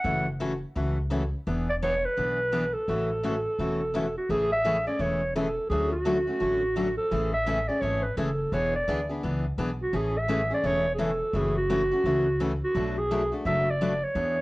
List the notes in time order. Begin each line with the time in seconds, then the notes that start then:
Already playing: F#5
0.04 F#1 C#3 E3 A3 C#4 F#4
0.40 C#3 E3 A3 C#4 F#4
0.75 C#2 C#3 E3 A3 C#4 F#4
1.10 C#3 E3 A3 C#4 F#4
1.47 E1 E3 B3 D4 G#4
1.69 D5
1.82 E3 B3 D4 G#4 C#5
2.05 B4
2.17 B1 E3 B3 D4 G#4
2.52 E3 B3 D4 G#4
2.73 A4
2.88 A1 C#3 E3 A3 C#4 F#4
3.24 C#3 E3 A3 C#4 F#4
3.59 E1 C#3 E3 A3 C#4 F#4
3.94 C#3 E3 A3 C#4 F#4
4.17 F#4
4.29 A1 C#3 E3 A3 C#4 G#4
4.52 E5
4.64 C#3 E3 A3 C#4 G#4
4.87 A3 C#4 G#4 D5
4.99 E1 C#3 E3 A3 C#4 G#4 C#5
5.35 C#3 E3 A3 C#4 G#4 A4
5.69 D2 D3 F#3 A3 C#4 F#4 G#4
5.92 F#4
6.05 D3 F#3 A3 C#4 F#4
6.27 A3 C#4 F#4
6.40 A1 D3 F#3 A3 C#4 F#4
6.76 D3 F#3 A3 C#4 F#4
6.97 A4
7.11 A1 C#3 E3 A3 C#4 G#4
7.34 E5
7.46 C#3 E3 A3 C#4 G#4
7.68 A3 C#4 G#4 D5
7.81 G#1 C#3 E3 A3 C#4 G#4 C#5
8.03 B4
8.17 F#1 C#3 E3 A3 C#4 G#4 A4
8.52 E1 E3 B3 D4 G#4 C#5
8.75 D5
8.88 D2 E3 B3 D4 G#4
9.09 B3 D4 G#4
9.23 C#2 E3 B3 D4 G#4
9.58 B1 E3 B3 D4 G#4
9.82 F#4
9.93 A1 C#3 E3 A3 C#4 G#4
10.18 E5
10.28 C#3 E3 A3 C#4 G#4
10.50 A3 C#4 G#4 D5
10.63 E1 C#3 E3 A3 C#4 G#4 C#5
10.95 C#3 E3 G#4
10.99 A3 C#4 G#4 A4
11.33 F#1 C#3 E3 A3 C#4 F#4 G#4
11.57 F#4
11.70 C#3 E3 A3 C#4 F#4
11.91 A3 C#4 F#4
12.04 C#2 C#3 E3 A3 C#4 F#4
12.40 C#3 E3 A3 C#4 F#4
12.64 F#4
12.75 B1 B2 F#3 A3 D4 F#4
12.98 G#4
13.11 B2 F#3 A3 D4 F#4
13.32 A3 D4 F#4
13.45 F#1 B2 F#3 A3 D4 F#4 E5
13.70 D5
13.81 B2 F#3 A3 D4 F#4
14.03 C#5
14.15 E2 E3 B3 D4 G#4